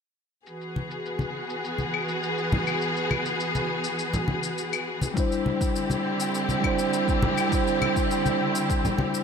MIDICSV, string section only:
0, 0, Header, 1, 2, 480
1, 0, Start_track
1, 0, Tempo, 588235
1, 379, Time_signature, 4, 2, 24, 8
1, 7536, End_track
2, 0, Start_track
2, 0, Title_t, "String section"
2, 0, Program_c, 0, 48
2, 379, Note_on_c, 0, 68, 78
2, 380, Note_on_c, 0, 66, 66
2, 382, Note_on_c, 0, 52, 67
2, 382, Note_on_c, 0, 59, 67
2, 4186, Note_off_c, 0, 68, 0
2, 4187, Note_off_c, 0, 52, 0
2, 4187, Note_off_c, 0, 66, 0
2, 4188, Note_off_c, 0, 59, 0
2, 4216, Note_on_c, 0, 50, 73
2, 4217, Note_on_c, 0, 60, 66
2, 4217, Note_on_c, 0, 64, 69
2, 4220, Note_on_c, 0, 67, 81
2, 7536, Note_off_c, 0, 50, 0
2, 7536, Note_off_c, 0, 60, 0
2, 7536, Note_off_c, 0, 64, 0
2, 7536, Note_off_c, 0, 67, 0
2, 7536, End_track
0, 0, End_of_file